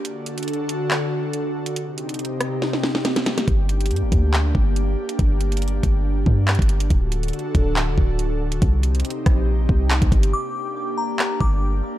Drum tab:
HH |x-----------x-----x--x--x--x--------x-----------------------------------x-----------------x-----|x-----------x-----x--x--x--x--------x-----------------------------------x-----x-----x-----x-----|x-----------x-----x--x--x--x--------x-----------------------------------x-----------------x-----|x-----------x-----x--x--x--x--------x-----------------------------------x---x---x---x-----x-----|
CP |------------------------------------------------x-----------------------------------------------|------------------------------------------------------------------------------------------------|------------------------------------------------x-----------------------------------------------|------------------------------------------------------------------------x-----------------------|
SD |------------------------------------------------------------------------------------------------|------------------------------------r-----------o-----o-----o-----o-----o-----o-----o-----o-----|------------------------------------------------------------------------------------------------|------------------------------------------------------------------------------------------------|
BD |------------------------------------------------------------------------------------------------|------------------------------------------------------------------------------------------------|o-----------------------------------o-----------------------o-----------------------------------|o-----------------------------------o-----------------------o-----------------o-----------------|

HH |x-----------x-----x--x--x--x--------x-----------------------------------x-----------------x-----|x-----------x-----x--x--x--x--------x-----------------------------------x-----x-----x-----x-----|------------------------------------------------------------------------------------------------|
CP |------------------------------------------------x-----------------------------------------------|------------------------------------------------------------------------x-----------------------|------------------------------------------------x-----------------------------------------------|
SD |------------------------------------------------------------------------------------------------|------------------------------------r-----------------------------------------------------------|------------------------------------------------------------------------------------------------|
BD |o-----------------------------------o-----------------------o-----------------------------------|o-----------------------------------o-----------------------o-----------------o-----o-----------|------------------------------------------------------------o-----------------------------------|